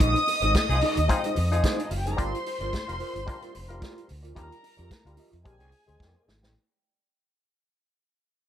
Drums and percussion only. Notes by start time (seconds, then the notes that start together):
0.00 kick, closed hi-hat
0.16 closed hi-hat
0.28 open hi-hat
0.42 closed hi-hat
0.55 kick, snare, closed hi-hat
0.70 closed hi-hat
0.81 open hi-hat
0.97 closed hi-hat
1.09 kick, closed hi-hat
1.24 closed hi-hat
1.36 open hi-hat
1.52 closed hi-hat
1.64 kick, snare, closed hi-hat
1.80 closed hi-hat
1.91 open hi-hat
2.06 closed hi-hat
2.18 kick, closed hi-hat
2.35 closed hi-hat
2.46 open hi-hat
2.61 closed hi-hat
2.73 kick, snare, closed hi-hat
2.89 closed hi-hat
3.00 open hi-hat
3.16 closed hi-hat
3.28 kick, closed hi-hat
3.42 closed hi-hat
3.55 open hi-hat
3.70 closed hi-hat
3.82 kick, snare, closed hi-hat
3.98 closed hi-hat
4.09 open hi-hat
4.24 closed hi-hat
4.36 kick, closed hi-hat
4.52 closed hi-hat
4.64 open hi-hat
4.78 closed hi-hat
4.91 kick, snare, closed hi-hat
5.07 closed hi-hat
5.17 open hi-hat
5.33 closed hi-hat
5.46 kick, closed hi-hat
5.60 closed hi-hat
5.72 open hi-hat
5.89 closed hi-hat
6.00 kick, snare
6.28 snare
6.43 snare